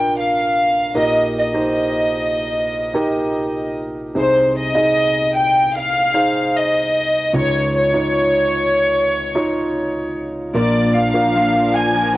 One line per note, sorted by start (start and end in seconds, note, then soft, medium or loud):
0.00 0.90 A#1 soft
0.00 0.90 A#2 soft
0.00 0.96 D4 medium
0.00 0.96 F4 medium
0.00 0.95 A#4 medium
0.00 0.16 G5 loud
0.19 0.93 F5 medium
0.95 4.11 A#1 soft
0.95 4.11 A#2 soft
0.95 1.52 D#4 medium
0.95 1.52 G4 medium
0.95 1.52 A#4 medium
0.95 1.36 D#5 medium
1.38 3.72 D#5 medium
1.54 2.87 D#4 medium
1.54 2.87 G4 medium
1.54 2.88 C5 medium
2.94 4.08 D#4 medium
2.94 4.08 G4 medium
2.94 4.08 A#4 medium
4.15 7.31 C2 soft
4.15 7.31 C3 soft
4.15 4.72 D#4 medium
4.15 4.72 G#4 medium
4.15 4.72 C5 medium
4.15 4.53 C5 medium
4.57 5.32 D#5 medium
4.74 6.07 D#4 medium
4.74 6.08 G#4 medium
4.74 6.08 D#5 medium
5.36 5.72 G5 medium
5.76 6.55 F5 loud
6.14 7.28 D#4 medium
6.14 7.28 G#4 medium
6.14 7.28 C5 medium
6.57 7.36 D#5 medium
7.33 10.50 C#2 soft
7.33 10.50 C#3 soft
7.33 7.91 D#4 medium
7.33 7.91 F4 medium
7.33 7.91 C#5 medium
7.33 7.73 C#5 medium
7.77 10.11 C#5 medium
7.93 9.27 D#4 medium
7.93 9.27 F4 medium
7.93 9.27 C#5 medium
9.35 10.49 D#4 medium
9.35 10.49 F4 medium
9.35 10.49 C#5 medium
10.53 12.17 A#1 medium
10.53 10.94 A#2 medium
10.53 12.17 A#2 soft
10.53 12.17 F3 medium
10.53 10.94 F3 medium
10.53 10.94 A#3 medium
10.53 12.17 D4 medium
10.53 11.11 D4 medium
10.53 10.94 D4 medium
10.53 11.11 F4 medium
10.53 10.93 F4 medium
10.53 12.17 A#4 medium
10.53 11.12 A#4 medium
10.53 10.92 D5 medium
10.94 11.34 A#3 soft
10.94 11.35 D4 soft
10.94 11.34 F4 soft
10.94 11.75 F5 medium
11.14 12.17 D4 medium
11.14 12.17 F4 medium
11.14 12.17 A#4 medium
11.35 12.17 F3 soft
11.35 12.17 A#3 medium
11.35 12.17 D4 medium
11.35 12.17 F4 medium
11.76 12.15 G#5 medium